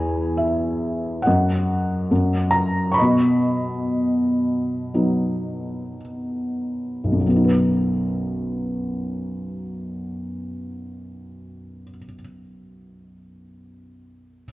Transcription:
Already playing: E2 B4 G#5
0.37 E5
1.22 D#5 F#5
1.27 F#2
2.11 F#2
2.51 A#5
2.91 B5 C#6
2.98 B2 D#5
4.94 F#3 B3 D#4
7.04 B1
7.12 F#2
7.20 F#3
7.28 B3
7.36 D#4
7.44 B4

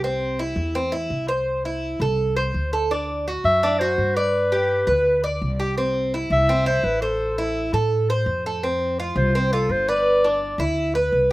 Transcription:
Already playing: C2
0.04 C4
0.39 E4
0.56 E2
0.75 C4
0.92 E4
1.10 C2
1.28 C5
1.65 E4
2.00 C2 A4
2.36 C5
2.54 D2
2.73 A4
2.91 D4
3.28 F#4
3.44 F#2 E5
3.63 D4
3.79 F#4 C5
3.98 G2
4.15 B4 D5
4.52 G4
4.87 D2 B4
5.24 D5
5.42 C2
5.60 G4
5.78 C4
6.14 E4
6.30 C2 E5
6.49 C4
6.66 E4 C5
6.84 A1 B4
7.02 A4 C5
7.38 E4
7.73 A2 A4
8.10 C5
8.26 F2
8.46 A4
8.63 C4
9.00 F4
9.16 C2 C5
9.35 C4
9.53 F4 A4
9.69 G1 C5
9.88 B4 D5
10.24 D4
10.58 D2 E4
10.95 B4
11.12 C2

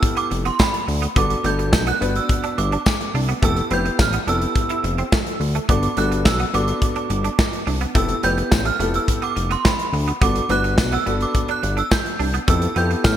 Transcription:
Already playing: B3 E4 G4 A4 E6
0.03 kick, closed hi-hat
0.17 B3 D6, closed hi-hat
0.31 F1, muted clean electric guitar stroke, closed hi-hat
0.45 B3 C6, closed hi-hat
0.59 C4 B5, kick, snare, tambourine
0.74 closed hi-hat
0.88 D2, muted clean electric guitar stroke, open hi-hat
1.02 B3, closed hi-hat
1.15 G1 B3 D4 F#4 A4 D6, kick, closed hi-hat
1.30 closed hi-hat
1.44 G1 A3 B3 D4 F#4 A4 G6, closed hi-hat
1.59 muted clean electric guitar stroke, closed hi-hat
1.73 B1, muted clean electric guitar stroke, kick, snare, tambourine
1.87 B3 F#6, closed hi-hat
2.00 G1 B3 D4 F#4 B4, closed hi-hat
2.10 F#6
2.15 E6, closed hi-hat
2.29 kick, closed hi-hat
2.43 D4, closed hi-hat
2.58 G1 D6, muted clean electric guitar stroke, closed hi-hat
2.72 D4, closed hi-hat
2.86 muted clean electric guitar stroke, kick, snare, tambourine
3.01 closed hi-hat
3.14 C2 D4, open hi-hat
3.29 B3, closed hi-hat
3.42 F1 A3 B3 E4 G4 A4 E6, kick, closed hi-hat
3.56 closed hi-hat
3.70 F1 B3 C4 E4 G4 B4 G6, closed hi-hat
3.85 muted clean electric guitar stroke, closed hi-hat
3.99 A1 F6, muted clean electric guitar stroke, kick, snare, tambourine
4.13 B3, closed hi-hat
4.27 F1 B3 D4 E4 G4 A4 E6, closed hi-hat
4.42 closed hi-hat
4.55 kick, closed hi-hat
4.69 E4, closed hi-hat
4.84 F1, muted clean electric guitar stroke, closed hi-hat
4.98 C4, closed hi-hat
5.12 A3, kick, snare, tambourine
5.26 closed hi-hat
5.40 D2, muted clean electric guitar stroke, open hi-hat
5.55 A3, closed hi-hat
5.69 G1 B3 D4 F#4 A4 D6, kick, closed hi-hat
5.83 closed hi-hat
5.97 G1 A3 B3 D4 F#4 A4 F#6, closed hi-hat
6.12 muted clean electric guitar stroke, closed hi-hat
6.25 B1 E6, muted clean electric guitar stroke, kick, snare, tambourine
6.39 B3, closed hi-hat
6.53 G1 B3 D4 F#4 A4 D6, closed hi-hat
6.68 D6, closed hi-hat
6.82 kick, closed hi-hat
6.96 D4, closed hi-hat
7.10 G1, muted clean electric guitar stroke, closed hi-hat
7.24 D4, closed hi-hat
7.39 muted clean electric guitar stroke, kick, snare, tambourine
7.53 closed hi-hat
7.67 C2 D4, open hi-hat
7.81 B3, closed hi-hat
7.95 F1 A3 B3 E4 G4 A4 E6, kick, closed hi-hat
8.09 closed hi-hat
8.23 F1 G3 B3 E4 G4 B4 G6, closed hi-hat
8.38 muted clean electric guitar stroke, closed hi-hat
8.51 A1, muted clean electric guitar stroke, kick, snare, tambourine
8.65 A3 F6, closed hi-hat
8.80 F1 A3 B3 E4 G4 A4, closed hi-hat
8.94 E6, closed hi-hat
9.08 kick, closed hi-hat
9.22 B3 D6, closed hi-hat
9.36 F1, muted clean electric guitar stroke, closed hi-hat
9.51 B3 C6, closed hi-hat
9.65 C4 B5, kick, snare, tambourine
9.79 closed hi-hat
9.93 D2, muted clean electric guitar stroke, open hi-hat
10.08 B3, closed hi-hat
10.21 G1 B3 D4 F#4 A4 D6, kick, closed hi-hat
10.35 closed hi-hat
10.49 G1 A3 B3 D4 F#4 B4 F#6, closed hi-hat
10.64 muted clean electric guitar stroke, closed hi-hat
10.78 B1, muted clean electric guitar stroke, kick, snare, tambourine
10.92 B3 E6, closed hi-hat
11.06 G1 B3 D4 F#4 A4, closed hi-hat
11.21 D6, closed hi-hat
11.35 kick, closed hi-hat
11.48 D4 F#6, closed hi-hat
11.63 G1, muted clean electric guitar stroke, closed hi-hat
11.77 D4 E6, closed hi-hat
11.91 G6, muted clean electric guitar stroke, kick, snare, tambourine
12.06 closed hi-hat
12.19 C2 D4, open hi-hat
12.34 B3, closed hi-hat
12.47 F2 A3 B3 E4 G4 A4 E6, kick, closed hi-hat
12.62 closed hi-hat
12.76 F2 B3 E4 G4 A4 G6, closed hi-hat
12.91 muted clean electric guitar stroke, closed hi-hat
13.04 A2 F6, muted clean electric guitar stroke, kick, snare, tambourine

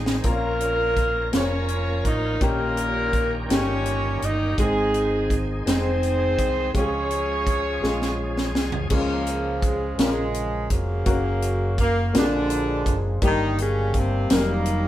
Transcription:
Already playing: A1 G#2 D#3 G#3 C4 D#4 G#4
0.06 snare
0.24 A#1 A#2 F3 A#3 C4 C#4 F4 A#4, kick, closed hi-hat
0.31 C#4
0.60 closed hi-hat
0.97 kick, closed hi-hat
1.32 F1 A#3 C#4 F4 A#4 C5 C#5, snare, closed hi-hat
1.40 C#5
1.68 closed hi-hat
2.05 A1 D#4 D#5, kick, closed hi-hat
2.41 A#1 A#2 D#3 A#3 C#4 D#4 F#4 G4 A#4, kick, closed hi-hat
2.47 G4
2.77 closed hi-hat
3.13 kick, closed hi-hat
3.49 G1 A#3 C#4 D#4 G4 C#5, snare, closed hi-hat
3.86 closed hi-hat
4.21 G1 D#4 D#5, closed hi-hat
4.58 G#1 G#2 D#3 G#3 A#3 C4 D#4 G#4, kick, closed hi-hat
4.66 C4
4.94 closed hi-hat
5.30 kick, closed hi-hat
5.66 F1 G#3 C4 D#4 G#4 C5, snare, closed hi-hat
6.03 closed hi-hat
6.38 C2, kick, closed hi-hat
6.74 C#2 C#3 F3 G#3 C#4 F4 G4 G#4 C#5, kick, closed hi-hat
6.81 G#4
7.11 closed hi-hat
7.47 kick, closed hi-hat
7.82 A#1 G#3 C#4 F4 G#4, snare
8.02 snare
8.38 snare
8.54 C2, snare
8.72 floor tom
8.90 C#2 C#3 F3 G#3 A#3 C#4 F4 G#4, kick, crash
9.27 closed hi-hat
9.62 G#3, kick, closed hi-hat
9.98 A#1 C#3 F3 G#3 C#4 F4 A#4, snare, closed hi-hat
10.34 closed hi-hat
10.70 F1 C#3 F#3 A#3, kick, closed hi-hat
11.06 F#1 A#3 C#4 F#4 A#4, kick, closed hi-hat
11.42 closed hi-hat
11.78 A#3, kick, closed hi-hat
12.13 A#1 A#2 D3 F3 G#3 A#3 D4 F4 F#4, snare, closed hi-hat
12.22 G#4
12.50 closed hi-hat
12.86 F#1, kick, closed hi-hat
13.22 G1 G2 D#3 G3 A#3 D#4 G4, kick, closed hi-hat
13.58 C#3 C#4, closed hi-hat
13.94 C3 C4, kick, closed hi-hat
14.30 F1 D#3 F#3 G3 A#3 D#4 A#4, snare, closed hi-hat
14.37 G3
14.66 closed hi-hat

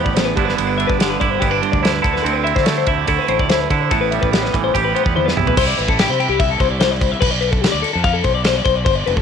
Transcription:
Already playing: A2 E3 G3 B3 G4
0.04 A1 D5, kick
0.14 E2 C5, snare, ride
0.25 B4
0.35 G1 G2 D3 B3 D4 E4 G4, kick, ride
0.45 B4, snare
0.55 G1 B3 A4, ride
0.67 B4
0.78 D4 E5, ride
0.87 G1 B4, kick
0.99 D3 G4, snare, ride
1.10 B4
1.20 G1 E4 D5, kick, ride
1.30 C5
1.40 G1 B3 G4, kick, ride
1.51 D4 B4
1.62 G2 C5, ride
1.72 D2 D5, kick
1.82 E4 C5, snare, ride
1.92 B4
2.02 D2 D3 E4 A4, kick, ride
2.14 B4, snare
2.22 D2 C4 A4, ride
2.33 B4
2.44 E4 E5, ride
2.56 D3 C5, kick, snare
2.64 A3 A4, snare, ride
2.78 C5
2.87 D2 E4 E5, kick, ride
2.98 D5
3.07 D2 E4 A4, kick, ride
3.19 B4
3.28 A1 A2 C5, ride
3.39 D2 D5, kick
3.49 E4 C5, snare, ride
3.61 B4
3.70 D3 E4 A4, kick, ride
3.81 C5
3.90 A1 A2 B3 A4, kick, ride
4.01 B4
4.11 G3 E5, ride
4.21 A1 B4, kick
4.32 B3 G4, snare, ride
4.43 B4, snare
4.53 A1 E3 D5, kick, ride
4.64 C5
4.74 A1 G4, kick, ride
4.85 B4
4.95 B3 C5, ride
5.04 E2 D5, kick
5.16 E2 C5, high tom
5.26 B4, snare
5.37 B1 E4 G4, mid tom
5.47 B4, floor tom
5.57 C2 C5, kick, crash
5.67 D5
5.78 A1 B4, crash
5.88 A4, kick
5.99 G4, snare, crash
6.09 C3 C5
6.20 G4, crash
6.29 C2 G4
6.40 E5, kick, crash
6.51 A4
6.60 C2 C5, kick, crash
6.70 D5
6.80 C5, snare, crash
6.91 D5
7.01 C5, kick, crash
7.12 E5
7.21 B1 B4, kick, crash
7.31 D5
7.41 B4, crash
7.51 A4, kick
7.61 G4, snare, crash
7.72 D2 D5
7.82 A4, crash
7.93 F2 A4
8.04 F5, kick, crash
8.14 A4
8.24 B1 C5, kick, crash
8.35 D5
8.44 C5, snare, crash
8.56 D5
8.65 B1 C5, kick, crash
8.75 D5
8.85 G1 C5, kick, crash
8.95 D5
9.06 F1 B4, crash
9.16 A4, kick

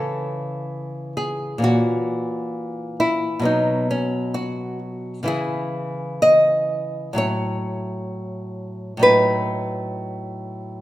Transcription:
Already playing: C#3 E3 C#4 A4
1.17 G#4
1.58 A#2 E3
1.62 C#4 F#4
3.00 E4
3.39 B2 F#3 B3
3.45 D#4
3.91 C#4
4.34 F#4
5.23 C#3 E3 E4
5.28 G#4
6.22 D#5
7.13 A2 F#3 E4
7.18 C#5
8.97 A2 F#3 D#4
9.03 B4

